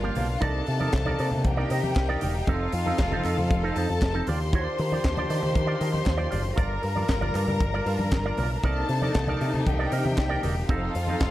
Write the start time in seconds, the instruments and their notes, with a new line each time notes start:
Already playing: string section G3 D4 F4 A#4, violin section F4 F5
0.03 clean electric guitar A#3 F4 G4, high conga
0.15 picked electric bass B1, clean electric guitar A#3 F4 G4, open hi-hat, low conga
0.28 muted clean electric guitar stroke
0.41 picked electric bass C2, string section C3 A#3 D#4, clean electric guitar D#4 A#4 D5, violin section A4 A5, kick, closed hi-hat, muted conga
0.66 picked electric bass C3, muted clean electric guitar stroke, open hi-hat
0.80 clean electric guitar D#4 A#4 D5, high conga
0.92 picked electric bass C2, kick, snare, clap, closed hi-hat, muted conga
1.06 clean electric guitar D#4 A#4 D5, high conga, low conga
1.19 picked electric bass C3, clean electric guitar D#4 A#4 D5, open hi-hat
1.31 picked electric bass C3, muted clean electric guitar stroke, low conga
1.44 picked electric bass C2, violin section G4 G5, muted clean electric guitar stroke, kick, closed hi-hat, high conga
1.57 clean electric guitar D#4 A#4 D5
1.70 picked electric bass C3, clean electric guitar D#4 A#4 D#5, open hi-hat, muted conga
1.83 picked electric bass C3, muted clean electric guitar stroke, high conga
1.96 picked electric bass C2, muted clean electric guitar stroke, kick, snare, clap, closed hi-hat
2.09 clean electric guitar D#4 A#4 D5, high conga
2.21 picked electric bass E1, clean electric guitar D#4 A#4 D5, open hi-hat, low conga
2.35 muted clean electric guitar stroke
2.47 picked electric bass F1, string section F3 C4 A4, clean electric guitar C4 D#4 A4, violin section F4 F5, kick, closed hi-hat, muted conga
2.72 picked electric bass F2, muted clean electric guitar stroke, open hi-hat
2.86 clean electric guitar C4 D#4 A4, high conga
2.98 picked electric bass F1, muted clean electric guitar stroke, kick, snare, clap, closed hi-hat, muted conga
3.11 clean electric guitar C4 D#4 A4, high conga, low conga
3.24 picked electric bass F2, clean electric guitar C4 D#4 A4, clap, open hi-hat, muted conga
3.38 picked electric bass F2, muted clean electric guitar stroke, low conga
3.50 picked electric bass F1, muted clean electric guitar stroke, kick, closed hi-hat, muted conga, high conga
3.63 clean electric guitar C4 D#4 A4
3.76 picked electric bass F2, clean electric guitar C4 D#4 C5, violin section A4 A5, open hi-hat, muted conga
3.89 picked electric bass F2, muted clean electric guitar stroke, high conga
4.01 picked electric bass F1, muted clean electric guitar stroke, kick, snare, clap, closed hi-hat
4.14 clean electric guitar C4 D#4 A4, high conga
4.26 picked electric bass D#2, string section D#3 D4 F4 G4, clean electric guitar F4 G4 D5, violin section C5 C6, open hi-hat, muted conga, low conga
4.41 muted clean electric guitar stroke
4.53 clean electric guitar F4 G4 D5, kick, closed hi-hat, muted conga
4.78 picked electric bass D#3, muted clean electric guitar stroke, open hi-hat, muted conga
4.92 clean electric guitar F4 G4 D5, high conga
5.04 picked electric bass D#2, kick, snare, clap, closed hi-hat
5.17 clean electric guitar F4 G4 D5, high conga, low conga
5.29 picked electric bass D#3, clean electric guitar F4 G4 D5, open hi-hat, muted conga
5.43 picked electric bass D#3, muted clean electric guitar stroke, low conga
5.55 picked electric bass D#3, muted clean electric guitar stroke, kick, closed hi-hat, high conga
5.67 clean electric guitar F4 G4 D5
5.79 picked electric bass D#3, clean electric guitar F4 G4 D#5, open hi-hat, muted conga
5.92 muted clean electric guitar stroke, high conga
6.05 picked electric bass D#2, muted clean electric guitar stroke, kick, snare, clap, closed hi-hat, muted conga
6.17 clean electric guitar F4 G4 D5, high conga
6.30 picked electric bass F#1, clean electric guitar F4 G4 D5, open hi-hat, muted conga, low conga
6.56 picked electric bass G1, string section G3 D4 A#4, clean electric guitar F4 A#4 D5, violin section A#4 A#5, kick, closed hi-hat, muted conga
6.82 picked electric bass G2, muted clean electric guitar stroke, open hi-hat
6.96 clean electric guitar F4 A#4 D5, high conga
7.08 picked electric bass G1, muted clean electric guitar stroke, kick, snare, clap, closed hi-hat
7.21 clean electric guitar F4 A#4 D5, high conga, low conga
7.35 picked electric bass G2, clean electric guitar F4 A#4 D5, clap, open hi-hat, muted conga
7.48 picked electric bass G2, low conga
7.60 picked electric bass G1, muted clean electric guitar stroke, kick, closed hi-hat, high conga
7.74 clean electric guitar F4 A#4 D5
7.86 picked electric bass G2, clean electric guitar F4 A#4 F5, open hi-hat, muted conga
7.99 picked electric bass G2, muted clean electric guitar stroke, high conga
8.11 picked electric bass G1, muted clean electric guitar stroke, kick, snare, clap, closed hi-hat, muted conga
8.24 clean electric guitar F4 A#4 D5, high conga
8.37 picked electric bass B1, clean electric guitar F4 A#4 D5, open hi-hat, low conga
8.51 muted clean electric guitar stroke
8.63 picked electric bass C2, string section C3 A#3 D#4, clean electric guitar D#4 A#4 D5, violin section A4 A5, kick, closed hi-hat
8.89 picked electric bass C3, open hi-hat
9.02 clean electric guitar D#4 A#4 D5, high conga
9.14 picked electric bass C2, muted clean electric guitar stroke, kick, snare, clap, closed hi-hat
9.28 clean electric guitar D#4 A#4 D5, high conga, low conga
9.40 picked electric bass C3, clean electric guitar D#4 A#4 D5, open hi-hat, muted conga
9.53 picked electric bass C3, muted clean electric guitar stroke, low conga
9.66 picked electric bass C2, violin section G4 G5, muted clean electric guitar stroke, kick, closed hi-hat, muted conga, high conga
9.79 clean electric guitar D#4 A#4 D5
9.92 picked electric bass C3, clean electric guitar D#4 A#4 D#5, open hi-hat, muted conga
10.05 picked electric bass C3, muted clean electric guitar stroke, high conga
10.17 picked electric bass C2, muted clean electric guitar stroke, kick, snare, clap, closed hi-hat
10.29 clean electric guitar D#4 A#4 D5, high conga
10.43 picked electric bass E1, clean electric guitar D#4 A#4 D5, open hi-hat, low conga
10.56 muted clean electric guitar stroke
10.69 picked electric bass F1, string section F3 C4 D#4 A4, clean electric guitar C4 D#4 A4, violin section F4 F5, kick, closed hi-hat
10.95 picked electric bass F2, open hi-hat, muted conga
11.07 clean electric guitar C4 D#4 A4, high conga
11.20 picked electric bass F1, muted clean electric guitar stroke, kick, snare, clap, closed hi-hat, muted conga